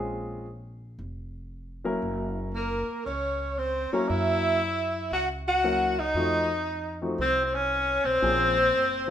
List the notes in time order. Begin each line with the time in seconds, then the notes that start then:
Already playing: A#1 G#3 C4 C#4 F4 G#4
0.99 F1
1.84 F#3 A#3 C#4 E4 A#4
2.02 F#1
2.55 A#3 A#4
2.89 muted upright bass stroke
3.05 C#2 C#4 C#5
3.58 C4 C5
3.92 F#3 A#3 C#4 E4 A#4 C#5, muted upright bass stroke
4.09 F#2 E4 E5
5.11 C#2 F#4 F#5
5.48 F#4 F#5
5.64 F#3 A#3 C#4 E4 A#4
5.99 D#4 D#5
6.14 F2 F3 A3 C4 D#4 F#4
7.02 F3 A3 C4 D#4 F#4
7.18 C2 C4 C5
7.44 C4 C5
7.53 C#4 C#5
8.04 B1 C4 C5
8.22 A#1 F3 A#3 C4 C#4 G#4
8.74 F#1